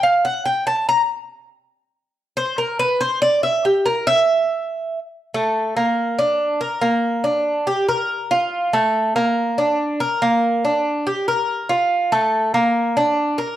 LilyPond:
\new Staff \with { instrumentName = "Cuban tres" } { \time 4/4 \key bes \lydian \tempo 4 = 142 f''8 ges''8 g''8 a''8 bes''8 r4. | r4. c''8 bes'8 b'8 c''8 d''8 | e''8 g'8 bes'8 e''2~ e''16 r16 | r8 a4 bes4 d'4 bes'8 |
bes4 d'4 g'8 bes'4 f'8~ | f'8 a4 bes4 d'4 bes'8 | bes4 d'4 g'8 bes'4 f'8~ | f'8 a4 bes4 d'4 bes'8 | }